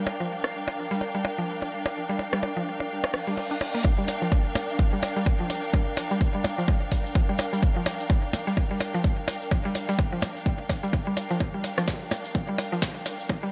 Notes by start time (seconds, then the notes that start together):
Already playing: D4 A#4 F5 G5
0.07 percussion blips
0.20 G1 F3
0.44 F1, cross-stick, percussion blips
0.68 G1, percussion blips
0.77 G1
0.91 G3
1.01 G1, percussion blips
1.15 G1 G3
1.25 percussion blips
1.38 G1 F3
1.62 G1, percussion blips
1.72 D1
1.86 percussion blips
2.09 G1 G3
2.19 percussion blips
2.33 F1 G3, cross-stick
2.43 percussion blips
2.57 G1 F3
2.67 G1
2.80 percussion blips
2.90 G1, reverse cymbal
3.04 G1, cross-stick, percussion blips
3.14 cross-stick
3.27 G1 G3
3.37 percussion blips
3.51 D4
3.61 A#1, percussion blips
3.75 A#3
3.85 kick, percussion blips, shaker
3.98 G3
4.08 open hi-hat, percussion blips, shaker
4.22 F3, shaker
4.31 kick, percussion blips, shaker
4.55 open hi-hat, percussion blips, shaker
4.69 shaker
4.79 kick, percussion blips, shaker
4.93 G3
5.03 open hi-hat, percussion blips, shaker
5.16 G3, shaker
5.26 kick, percussion blips, shaker
5.40 F3
5.50 open hi-hat, percussion blips, shaker
5.63 shaker
5.74 kick, percussion blips, shaker
5.97 open hi-hat, percussion blips, shaker
6.11 G3, shaker
6.21 kick, percussion blips, shaker
6.35 G3
6.44 open hi-hat, percussion blips, shaker
6.58 F3, shaker
6.68 kick, percussion blips, shaker
6.92 kick, open hi-hat, percussion blips, shaker
7.06 shaker
7.15 kick, percussion blips, shaker
7.29 G3
7.38 open hi-hat, percussion blips, shaker
7.53 G3, shaker
7.62 kick, percussion blips, shaker
7.76 F3
7.86 open hi-hat, percussion blips, shaker
8.00 shaker
8.10 kick, percussion blips, shaker
8.33 open hi-hat, percussion blips, shaker
8.47 G3, shaker
8.57 kick, percussion blips, shaker
8.71 G3
8.80 open hi-hat, percussion blips, shaker
8.94 F3, shaker
9.04 kick, percussion blips, shaker
9.28 open hi-hat, percussion blips, shaker
9.41 shaker
9.51 kick, percussion blips, shaker
9.65 G3
9.75 open hi-hat, percussion blips, shaker
9.89 G3, shaker
9.99 kick, percussion blips, shaker
10.13 F3
10.21 open hi-hat, percussion blips, shaker
10.37 shaker
10.46 kick, percussion blips, shaker
10.69 kick, open hi-hat, percussion blips, shaker
10.83 G3, shaker
10.93 kick, percussion blips, shaker
11.07 G3
11.17 open hi-hat, percussion blips, shaker
11.30 F3, shaker
11.40 kick, riser, percussion blips, shaker
11.54 G3
11.64 open hi-hat, percussion blips, shaker
11.78 F3, cross-stick, shaker
11.87 kick, snare, percussion blips, shaker
12.11 open hi-hat, percussion blips, shaker
12.24 shaker
12.35 kick, percussion blips, shaker
12.49 G3
12.58 open hi-hat, percussion blips, shaker
12.72 F3, shaker
12.82 kick, snare, percussion blips, shaker
13.06 open hi-hat, percussion blips, shaker
13.20 shaker
13.29 kick, percussion blips, shaker
13.43 G3